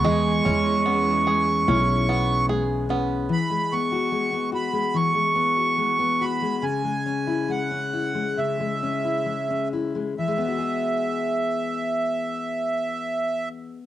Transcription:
<<
  \new Staff \with { instrumentName = "Accordion" } { \time 4/4 \key e \major \tempo 4 = 71 cis'''2. r4 | b''8 cis'''4 b''8 cis'''4. b''8 | gis''4 fis''4 e''4. r8 | e''1 | }
  \new Staff \with { instrumentName = "Five-string banjo" } { \time 4/4 \key e \major <gis gis'>8 cis'8 b8 gis'8 cis'8 b8 gis'8 b8 | r1 | r1 | r1 | }
  \new Staff \with { instrumentName = "Steel-string acoustic guitar" } { \time 4/4 \key e \major << { <b gis'>8 e'8 cis'4 e'8 cis'4 cis'8 | r8 b16 fis'8 b16 fis'4 b16 fis'8 b16 fis'8 | r8 cis'16 e'8 cis'16 e'4 cis'16 e'8 cis'16 e'8 | <gis b fis' gis'>1 | } \\ { e4. gis4. gis4 | e16 gis8. gis8. gis16 e16 gis8. gis8. gis16 | cis16 gis8. gis8. gis16 cis16 gis8. gis8. gis16 | e1 | } >> }
  \new Staff \with { instrumentName = "Cello" } { \clef bass \time 4/4 \key e \major gis2. r4 | r1 | r1 | r1 | }
  \new Staff \with { instrumentName = "Upright bass" } { \clef bass \time 4/4 \key e \major e,8 e,4. b,,2 | r1 | r1 | r1 | }
>>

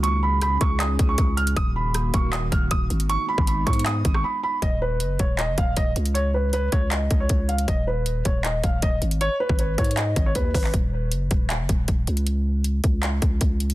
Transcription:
<<
  \new Staff \with { instrumentName = "Grand piano" } { \time 4/4 \key ees \minor \tempo 4 = 157 des'''8 ces'''8 ces'''8 des'''8 ees'''8. des'''8. f'''8 | ees'''8 ces'''4 des'''8 ees'''8 f'''8 ees'''8 r8 | des'''8 ces'''8 ces'''8 des'''8 ees'''8. des'''16 ces'''8 ces'''8 | ees''8 ces''4 des''8 ees''8 f''8 ees''8 r8 |
des''8 ces''8 ces''8 des''8 ees''8. des''8. f''8 | ees''8 ces''4 des''8 ees''8 f''8 ees''8 r8 | des''8 ces''8 ces''8 des''8 ees''8. des''16 ces''8 ces''8 | r1 |
r1 | }
  \new Staff \with { instrumentName = "Analog synth pad" } { \time 4/4 \key ees \minor <des des' ees' aes'>1 | <ees bes ges'>1 | <aes ces' ees'>1 | r1 |
r1 | r1 | r1 | r1 |
r1 | }
  \new Staff \with { instrumentName = "808-style bass" } { \clef bass \time 4/4 \key ees \minor des,4. des,4 des,8 des,4 | ees,,4. ees,,4 ees,,8 ees,,8 aes,,8~ | aes,,16 r8 aes,,8. aes,4 aes,,8 r4 | ees,,4 ges,,8 ees,,8. ges,,16 ees,,8 ees,,8 des,8~ |
des,4. des,4 des,8 des,4 | ees,,4. ees,,4 ees,,8 ees,,8 aes,,8~ | aes,,16 r8 aes,,8. aes,4 aes,,8 ees,8 aes,,8 | ees,,4 ges,,8 ees,,8. ges,,16 ees,,8 ees,,8 des,8~ |
des,4. des,4 des,8 des,4 | }
  \new DrumStaff \with { instrumentName = "Drums" } \drummode { \time 4/4 hh4 <hh ss>8 <hh bd>8 <hc hh>8 <hh bd>8 <hh bd>8 hh16 hh16 | <hh bd>4 <hh ss>8 <hh bd>8 <hc hh>8 <hh bd>8 <hh bd>8 hh16 hh16 | hh8. bd16 \tuplet 3/2 { hh16 r16 r16 <hh bd>16 hh16 hh16 } <hc hh>8 <hh bd>16 ss16 r4 | <hh bd>4 hh8 <hh bd>8 <hc hh>8 <hh bd>8 <hh bd>8 hh16 hh16 |
hh4 hh8 <hh bd>8 <hc hh>8 <hh bd>8 <hh bd>8 hh16 hh16 | <hh bd>4 hh8 <hh bd>8 <hc hh>8 <hh bd>8 <hh bd>8 hh16 hh16 | hh8. bd16 \tuplet 3/2 { hh16 r16 r16 <hh bd>16 hh16 hh16 } <hc hh>8 <hh bd>8 <hh bd>8 <hho bd>16 hc16 | <hh bd>4 hh8 <hh bd>8 <hc hh>8 <hh bd>8 <hh bd>8 hh16 hh16 |
hh4 hh8 <hh bd>8 <hc hh>8 <hh bd>8 <hh bd>8 hh16 hh16 | }
>>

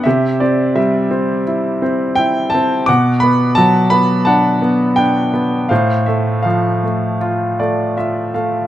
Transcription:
<<
  \new Staff \with { instrumentName = "Grand piano" } { \time 4/4 \key g \major \tempo 4 = 84 << { e''8 d''8 e''4 r4 g''8 a''8 | d'''8 b''8 a''8 b''8 a''4 g''4 | f''8 e''8 f''4 r8 d''8 e''8 f''8 | } \\ { g'2 r2 | fis''2 fis''2 | c''2 r2 | } >> }
  \new Staff \with { instrumentName = "Grand piano" } { \time 4/4 \key g \major c8 c'8 g8 c'8 e'8 c'8 e'8 c'8 | b,8 b8 fis8 b8 d'8 b8 d'8 b8 | a,8 a8 f8 a8 f'8 a8 f'8 a8 | }
>>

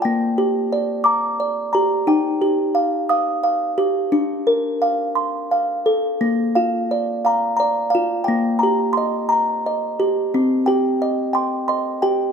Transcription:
\new Staff \with { instrumentName = "Music box" } { \time 6/8 \key bes \major \tempo 4. = 58 << { g''4. d'''4 bes''8 | g''4. f''4.~ | f''2~ f''8 r8 | r8 f''4 f''8 bes''8 f''8 |
g''8 bes''8 c'''8 bes''4 r8 | r8 g''4 g''8 c'''8 g''8 | } \\ { bes8 g'8 d''8 bes''8 d''8 g'8 | ees'8 g'8 f''8 ees'''8 f''8 g'8 | d'8 bes'8 f''8 c'''8 f''8 a'8 | bes8 f'8 d''8 bes''8 d''8 f'8 |
bes8 g'8 ees''8 bes''8 ees''8 g'8 | c'8 g'8 ees''8 c'''8 ees''8 g'8 | } >> }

